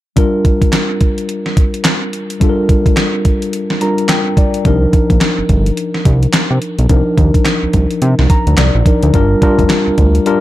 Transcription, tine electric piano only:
0.16 2.37 G3 medium
0.16 2.37 D4 medium
0.16 2.37 F4 medium
0.16 2.38 A#4 medium
2.40 3.78 G3 medium
2.40 3.79 D4 medium
2.40 3.79 F4 medium
2.40 2.50 A4 medium
2.49 3.81 A#4 medium
3.81 4.65 G3 medium
3.81 4.64 D4 soft
3.81 4.66 F4 medium
3.81 4.66 A#4 medium
3.81 4.08 A#5 medium
4.10 4.36 G5 medium
4.38 4.64 D5 medium
4.65 6.85 F3 medium
4.65 6.86 D4 medium
4.65 6.86 D#4 medium
4.65 6.86 A#4 medium
6.89 8.82 F3 medium
6.89 8.82 D4 medium
6.89 8.82 D#4 medium
6.89 8.83 A#4 medium
8.30 8.56 A#5 medium
8.58 9.10 D5 medium
8.86 9.14 F3 medium
8.86 9.13 D4 soft
8.86 9.14 D#4 soft
8.86 9.14 A#4 medium
9.14 9.34 G3 medium
9.14 9.35 D4 medium
9.14 9.35 F4 medium
9.14 9.35 A#4 medium
9.42 9.97 G3 medium
9.42 9.98 D4 medium
9.42 9.98 F4 medium
9.42 9.98 A#4 medium
10.26 10.40 G3 medium
10.26 10.40 D4 medium
10.26 10.40 F4 medium
10.26 10.40 A#4 loud

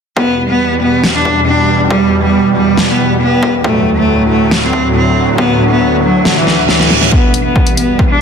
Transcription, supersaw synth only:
0.17 3.61 E2 medium
0.17 3.61 B2 medium
0.17 3.61 G3 medium
3.64 7.09 D2 medium
3.64 7.09 A2 medium
3.64 7.09 F#3 loud
7.12 8.21 E2 medium
7.12 8.21 B2 medium
7.12 8.21 G3 medium

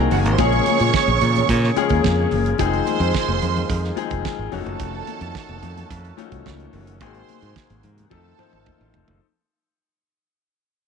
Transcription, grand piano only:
0.00 0.41 F#3 medium
0.00 0.39 A#3 medium
0.00 0.41 C4 medium
0.00 0.41 D#4 medium
0.00 0.40 G#4 loud
0.38 1.15 F3 medium
0.38 1.16 G#3 medium
0.38 1.16 A#3 medium
0.38 1.16 C#4 medium
0.38 1.16 G#4 medium
1.76 2.34 F3 medium
1.76 2.34 G#3 medium
1.76 2.34 A#3 medium
1.76 2.35 C#4 medium
1.76 2.35 G#4 loud
2.59 3.36 F3 medium
2.59 3.36 G#3 medium
2.59 3.36 C4 medium
2.59 3.37 D#4 medium
2.59 3.37 G#4 loud
3.96 4.50 F3 medium
3.96 4.52 G#3 medium
3.96 4.52 C4 medium
3.96 4.51 D#4 medium
3.96 4.53 G#4 loud
4.52 5.40 F3 medium
4.52 4.59 F#3 medium
4.52 5.41 C#4 medium
4.52 5.41 D#4 medium
4.52 5.41 F#4 medium
4.58 5.44 A3 medium
6.17 6.75 F3 loud
6.17 6.76 A3 medium
6.17 6.76 C#4 medium
6.17 6.76 D#4 medium
6.17 6.25 F4 medium
6.25 6.79 F#4 loud
7.01 7.78 F#3 medium
7.01 7.78 A#3 medium
7.01 7.78 C4 medium
7.01 7.78 D#4 medium
7.01 7.79 G#4 medium
8.10 8.33 F3 medium
8.10 8.33 A3 medium
8.10 8.33 C4 medium
8.10 8.33 D#4 medium
8.10 8.34 A4 medium
8.38 8.97 F3 medium
8.38 8.97 A3 medium
8.38 8.97 C4 medium
8.38 8.97 D#4 medium
8.38 8.97 C5 medium

